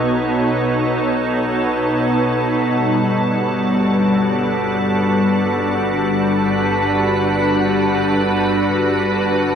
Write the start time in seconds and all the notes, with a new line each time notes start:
Already playing: B1 B2 B3 D#4 A4 B4 C#5 B5
2.62 G1 G3
3.33 F#4
3.54 D4
6.25 B4